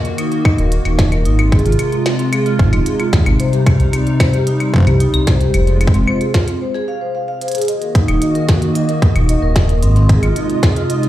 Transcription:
Already playing: analog synth pad D#3 A#3 F#4
0.05 vibraphone A#4, closed hi-hat
0.18 vibraphone D#4, closed hi-hat, claves
0.32 vibraphone D#4, closed hi-hat
0.45 vibraphone D#5, kick, claves
0.58 detuned saw bass D#1, vibraphone A#4, closed hi-hat
0.72 vibraphone F#4, closed hi-hat
0.85 detuned saw bass D#1, vibraphone D#4, closed hi-hat, claves
0.99 vibraphone D#5, kick, snare, closed hi-hat
1.12 vibraphone A#4, closed hi-hat, claves
1.25 detuned saw bass G#1, analog synth pad C3 G#3 F4, vibraphone D#4, closed hi-hat
1.39 vibraphone C4, closed hi-hat, claves
1.52 vibraphone G#4, kick, closed hi-hat
1.59 closed hi-hat
1.66 detuned saw bass G#1, vibraphone F4, closed hi-hat
1.72 closed hi-hat
1.79 vibraphone G#4, closed hi-hat, claves
1.92 vibraphone F4, closed hi-hat
2.06 vibraphone C4, snare, closed hi-hat, claves
2.19 vibraphone C4, closed hi-hat
2.33 vibraphone G#4, closed hi-hat, claves
2.46 vibraphone F4, closed hi-hat
2.59 detuned saw bass G#1, vibraphone D#4, kick
2.73 detuned saw bass D#1, vibraphone C4, closed hi-hat, claves
2.86 vibraphone G#4, closed hi-hat
3.00 vibraphone F4, closed hi-hat, claves
3.13 detuned saw bass D#2, vibraphone D#4, kick, snare, closed hi-hat
3.26 detuned saw bass G#1, vibraphone C4, closed hi-hat, claves
3.40 analog synth pad G3 D#4, vibraphone C5, closed hi-hat
3.53 vibraphone G4, closed hi-hat
3.66 vibraphone C5, kick, closed hi-hat, claves
3.80 detuned saw bass C2, vibraphone G4, closed hi-hat
3.93 vibraphone C4, closed hi-hat, claves
4.07 vibraphone C4, closed hi-hat
4.20 vibraphone C5, kick, snare, closed hi-hat, claves
4.33 vibraphone G4, closed hi-hat
4.47 vibraphone D#4, closed hi-hat
4.60 vibraphone C4, closed hi-hat, claves
4.74 vibraphone C5, kick
4.76 kick
4.78 kick
4.80 kick
4.83 kick
4.85 detuned saw bass C2, vibraphone G4, kick, closed hi-hat, claves
5.00 vibraphone D#4, closed hi-hat
5.14 detuned saw bass C2, vibraphone C4, closed hi-hat, claves
5.27 vibraphone C5, kick, snare, closed hi-hat
5.41 vibraphone G4, closed hi-hat
5.54 detuned saw bass F1, analog synth pad G#3 F4, vibraphone C5, closed hi-hat, claves
5.67 vibraphone G#4, closed hi-hat
5.81 vibraphone C4, closed hi-hat, claves
5.87 kick
5.94 detuned saw bass F1, vibraphone C4, closed hi-hat
6.08 vibraphone C5, claves
6.21 vibraphone G#4, closed hi-hat
6.34 vibraphone F4, kick, snare, closed hi-hat
6.48 vibraphone C4, closed hi-hat
6.61 vibraphone C5
6.75 vibraphone G#4
6.88 vibraphone F5
7.01 vibraphone C5
7.15 vibraphone F5
7.28 vibraphone F5
7.41 vibraphone C5, closed hi-hat
7.48 closed hi-hat
7.52 closed hi-hat
7.55 vibraphone G#4, closed hi-hat
7.58 closed hi-hat
7.62 closed hi-hat
7.65 analog synth pad D#3 A#3 F#4, synth texture D#5, closed hi-hat
7.68 vibraphone D#5, closed hi-hat
7.82 vibraphone A#4, closed hi-hat
7.95 vibraphone D#4, kick, closed hi-hat
8.08 detuned saw bass D#1, vibraphone D#4, closed hi-hat, claves
8.22 vibraphone D#5, closed hi-hat
8.35 vibraphone A#4, closed hi-hat
8.49 vibraphone F#4, kick, snare, closed hi-hat
8.62 vibraphone D#4, closed hi-hat
8.75 vibraphone D#5, closed hi-hat
8.89 vibraphone A#4, closed hi-hat
9.02 vibraphone F#4, kick, closed hi-hat
9.16 detuned saw bass D#1, vibraphone D#4, closed hi-hat, claves
9.29 vibraphone D#5, closed hi-hat
9.42 detuned saw bass D#1, vibraphone A#4
9.56 vibraphone D#5, kick, snare, closed hi-hat
9.69 vibraphone A#4, closed hi-hat
9.83 detuned saw bass G#1, analog synth pad C3 G#3 F4, vibraphone C4, closed hi-hat
9.96 vibraphone C4, closed hi-hat
10.09 vibraphone G#4, kick, closed hi-hat
10.23 detuned saw bass G#1, vibraphone F4, closed hi-hat, claves
10.36 vibraphone D#4, closed hi-hat
10.50 vibraphone C4, closed hi-hat
10.63 vibraphone G#4, kick, snare, closed hi-hat
10.76 vibraphone F4, closed hi-hat
10.90 vibraphone D#4, closed hi-hat
11.03 vibraphone C4, closed hi-hat

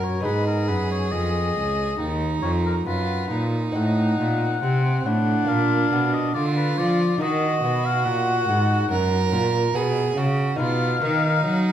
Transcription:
Already playing: lute F#2 F#4 A#4, cello F#2, violin A#4
0.04 oboe C#5
0.20 lute B3 D#4 G#4
0.25 lute G#2, cello G#2, violin G#4, oboe B4
0.47 oboe A#4
0.68 lute F#2, cello F#2, oboe B4
0.91 oboe C#5
1.11 lute F2, cello F2, oboe D#5
1.57 cello C#2
1.99 lute D#2, cello D#2, violin D#4
2.42 lute F2, cello F2, oboe C#5
2.65 oboe A#4
2.86 lute F#2, cello F#2, violin F4, oboe B4
3.31 lute A#2, cello A#2, violin D#4
3.72 cello A2, lute C4 D#4 D#5, oboe F#5
3.76 lute A2
4.19 cello A#2, lute A#2
4.62 cello C3, lute C3, violin C4
5.05 cello A2, lute A2, violin D4, oboe F#5
5.45 lute A#3 D4 A#4, oboe F5
5.50 lute A#2, cello A#2
5.92 cello B2, lute B2
6.13 oboe D#5
6.34 cello D3, lute D3, violin F4, oboe D5
6.57 oboe B4
6.78 cello F3, lute F3, oboe D5
7.18 cello D#3, lute D#3 D#4 A#4, oboe D#5
7.23 violin F#4
7.63 cello B2, lute B2
7.85 oboe F5
8.05 cello A#2, lute A#2, oboe F#5
8.48 cello G#2, lute G#2
8.90 cello F#2, lute F#2, violin A#4
9.32 cello A#2, lute A#2
9.74 lute B2, cello B2, violin G#4
10.17 lute C#3, cello C#3, violin F#4
10.56 lute B2 D#4 B4, oboe F5
10.60 cello B2, violin F4
11.01 cello D#3, lute D#3, violin D#4
11.44 lute F#3, cello F#3

